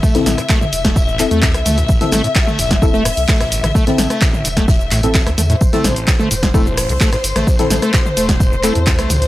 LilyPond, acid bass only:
\new Staff \with { instrumentName = "Acid bass" } { \clef bass \time 4/4 \key a \minor \tempo 4 = 129 a16 a,,8 g16 a16 a,16 r16 a16 a,,8 g16 a16 a,16 r16 a16 a,,16~ | a,,16 g16 a16 a,16 r16 a16 a,,8 g16 a16 a,16 r16 a16 a,,8 g16 | a16 a,16 r16 a16 a,,8 g16 a16 a,16 r16 a,16 a,16 r16 a16 a16 a,16 | r16 a16 a,,8 g16 a16 a,16 r16 a16 a,,8 g16 a16 a,16 r16 a16 |
a,,8 g16 a16 a,16 r16 a16 a,,8 g16 a16 a,16 r16 a16 a,,8 | }